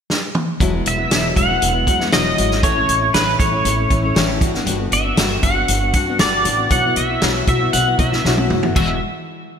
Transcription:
0.10 snare
0.35 mid tom
0.60 upright bass E1, steel-string acoustic guitar E2 B2 F#3 G#3 B3 E4, kick, closed hi-hat
0.72 steel-string acoustic guitar F#3 G#3 B3 E4
0.86 upright bass E1, pedal steel guitar E5, closed hi-hat
0.97 steel-string acoustic guitar F#3 G#3 B3 E4
1.10 upright bass E1, steel-string acoustic guitar E2 B2 F#3 G#3 B3 E4, snare, closed hi-hat
1.35 upright bass E1, steel-string acoustic guitar F#3 G#3 B3 E4, pedal steel guitar F#5, kick, closed hi-hat
1.48 steel-string acoustic guitar F#3 G#3 B3 E4
1.62 upright bass E1, closed hi-hat
1.73 steel-string acoustic guitar F#3 G#3 B3 E4
1.87 upright bass E2, steel-string acoustic guitar F#3 G#3 B3 E4, kick, closed hi-hat
1.99 steel-string acoustic guitar F#3 G#3 B3 E4, snare
2.12 upright bass E1, steel-string acoustic guitar E2 B2 F#3 G#3 B3 E4, pedal steel guitar D#5, snare, closed hi-hat
2.37 upright bass G#1, steel-string acoustic guitar F#3 G#3 B3 E4, closed hi-hat
2.51 snare
2.62 upright bass A1, steel-string acoustic guitar A2 E3 A3 C#4 E4, pedal steel guitar C#5, kick, closed hi-hat
2.76 steel-string acoustic guitar A3 C#4 E4
2.88 upright bass A1, closed hi-hat
3.01 steel-string acoustic guitar A3 C#4 E4
3.14 upright bass A1, steel-string acoustic guitar A2 E3 A3 C#4 E4, pedal steel guitar B4, snare, closed hi-hat
3.39 upright bass A1, steel-string acoustic guitar E3 A3 C#4 E4, pedal steel guitar C#5, kick, closed hi-hat
3.52 steel-string acoustic guitar A3 C#4 E4
3.65 upright bass A1, closed hi-hat
3.76 steel-string acoustic guitar A3 C#4 E4
3.89 upright bass A1, steel-string acoustic guitar E3 A3 C#4 E4, kick, closed hi-hat
4.02 steel-string acoustic guitar A3 C#4 E4
4.15 upright bass A1, steel-string acoustic guitar A2 E3 A3 C#4 E4, snare, closed hi-hat
4.40 upright bass G1, steel-string acoustic guitar G3 B3 D4 F#4, kick, closed hi-hat
4.53 steel-string acoustic guitar B3 D4 F#4, snare
4.65 upright bass G1, steel-string acoustic guitar G3 B3 D4 F#4, closed hi-hat
4.78 steel-string acoustic guitar B3 D4 F#4
4.92 upright bass G1, pedal steel guitar E5, closed hi-hat
5.03 steel-string acoustic guitar B3 D4 F#4
5.16 upright bass G1, steel-string acoustic guitar G3 B3 D4 F#4, snare, closed hi-hat
5.41 upright bass G1, steel-string acoustic guitar G3 B3 D4 F#4, pedal steel guitar F#5, kick, closed hi-hat
5.54 steel-string acoustic guitar B3 D4 F#4
5.68 upright bass G1, closed hi-hat
5.80 steel-string acoustic guitar B3 D4 F#4
5.93 upright bass G2, steel-string acoustic guitar G3 B3 D4 F#4, kick, closed hi-hat
6.06 steel-string acoustic guitar B3 D4 F#4
6.18 upright bass G1, steel-string acoustic guitar G3 B3 D4 F#4, pedal steel guitar D5, snare, closed hi-hat
6.44 upright bass A1, steel-string acoustic guitar G3 B3 D4 F#4, closed hi-hat
6.57 steel-string acoustic guitar B3 D4 F#4
6.69 upright bass B1, steel-string acoustic guitar B2 F#3 B3 E4 F#4, pedal steel guitar F#5, kick, closed hi-hat
6.82 steel-string acoustic guitar B3 E4 F#4
6.96 upright bass B1, pedal steel guitar E5, closed hi-hat
7.08 steel-string acoustic guitar B3 E4 F#4
7.21 upright bass B1, steel-string acoustic guitar B2 F#3 B3 E4 F#4, snare, closed hi-hat
7.46 upright bass B1, steel-string acoustic guitar F#3 B3 E4 F#4, pedal steel guitar E5, kick, closed hi-hat
7.59 steel-string acoustic guitar B3 E4 F#4
7.73 upright bass B1, pedal steel guitar F#5, closed hi-hat
7.85 steel-string acoustic guitar B3 E4 F#4
7.98 upright bass B1, steel-string acoustic guitar F#3 B3 E4 F#4, pedal steel guitar E5, kick, closed hi-hat
8.11 steel-string acoustic guitar B3 E4 F#4, snare
8.24 upright bass B1, steel-string acoustic guitar B2 F#3 B3 E4 F#4, snare
8.38 high tom
8.50 upright bass F#2, steel-string acoustic guitar F#3 B3 E4 F#4, mid tom
8.63 steel-string acoustic guitar B3 E4 F#4, floor tom
8.75 upright bass E1, steel-string acoustic guitar E2 B2 E3 G#3 B3 F#4, pedal steel guitar E5, kick, crash

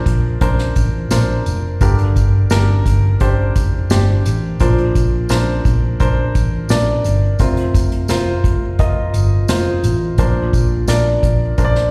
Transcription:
Already playing: grand piano A#2 F3 D4 A#4 C5
0.06 picked electric bass A#1, kick, closed hi-hat, tambourine
0.41 picked electric bass A#1, grand piano D4 A#4 C5, kick, closed hi-hat
0.58 snare
0.76 picked electric bass A1, kick, closed hi-hat, tambourine
1.11 picked electric bass A#1, grand piano D4 A#4 C5, snare, closed hi-hat, tambourine
1.46 picked electric bass F1, closed hi-hat, tambourine
1.81 picked electric bass G1, grand piano G2 D3 D4 G4 A#4, kick, closed hi-hat, tambourine
1.99 closed hi-hat
2.16 picked electric bass G1, kick, closed hi-hat, tambourine
2.50 picked electric bass G1, grand piano D4 G4 A#4, snare, closed hi-hat, tambourine
2.86 picked electric bass G1, kick, closed hi-hat, tambourine
3.20 picked electric bass G1, grand piano D4 G4 C5, kick, closed hi-hat, tambourine
3.56 picked electric bass F1, kick, closed hi-hat, tambourine
3.90 picked electric bass G1, grand piano D4 G4 C5, snare, closed hi-hat, tambourine
4.25 picked electric bass A1, closed hi-hat, tambourine
4.60 picked electric bass A#1, grand piano A#2 F3 D4 A#4 C5, kick, closed hi-hat, tambourine
4.78 closed hi-hat
4.95 picked electric bass A#1, kick, closed hi-hat, tambourine
5.29 picked electric bass A#1, grand piano D4 A#4 C5, snare, closed hi-hat, tambourine
5.65 picked electric bass A#1, kick, closed hi-hat, tambourine
6.00 picked electric bass A#1, grand piano D4 A#4 C5, kick, closed hi-hat, tambourine
6.35 picked electric bass A1, kick, closed hi-hat, tambourine
6.69 picked electric bass A#1, grand piano D4 A#4 D5, snare, closed hi-hat, tambourine
7.04 picked electric bass G1, closed hi-hat, tambourine
7.39 picked electric bass F1, grand piano C3 F4 A#4 C5, kick, closed hi-hat, tambourine
7.57 closed hi-hat
7.74 picked electric bass F1, kick, closed hi-hat, tambourine
7.92 closed hi-hat
8.08 picked electric bass F1, grand piano F4 A#4 C5, snare, closed hi-hat, tambourine
8.44 picked electric bass F1, kick, closed hi-hat
8.79 picked electric bass F1, grand piano F4 A#4 D#5, kick, closed hi-hat
9.14 picked electric bass G1, closed hi-hat, tambourine
9.48 picked electric bass F1, grand piano F4 A#4 C5, snare, closed hi-hat, tambourine
9.83 picked electric bass A1, closed hi-hat, tambourine
10.18 picked electric bass A#1, grand piano A#2 F3 D4 A#4 C5, kick, closed hi-hat, tambourine
10.53 picked electric bass A#1, kick, closed hi-hat, tambourine
10.88 picked electric bass A#1, grand piano D4 A#4 D5, snare, closed hi-hat, tambourine
11.23 picked electric bass A#1, kick, closed hi-hat
11.58 picked electric bass A#1, grand piano D4 A#4 C5, kick, closed hi-hat, tambourine
11.64 grand piano D5
11.75 snare

